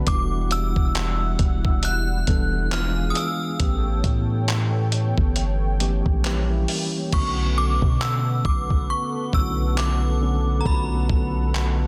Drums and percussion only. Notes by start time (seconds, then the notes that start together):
0.07 kick, closed hi-hat
0.51 closed hi-hat
0.76 kick
0.95 clap, closed hi-hat
1.39 kick, closed hi-hat
1.65 kick
1.83 closed hi-hat
2.27 kick, closed hi-hat
2.71 clap, closed hi-hat
3.15 closed hi-hat
3.60 kick, closed hi-hat
4.04 kick, closed hi-hat
4.48 clap, closed hi-hat
4.92 closed hi-hat
5.18 kick
5.36 closed hi-hat
5.80 closed hi-hat
6.06 kick
6.24 clap, closed hi-hat
6.68 open hi-hat
7.13 kick, crash
7.82 kick
8.02 clap
8.45 kick
8.70 kick
9.33 kick
9.78 clap
10.65 kick
11.10 kick
11.55 clap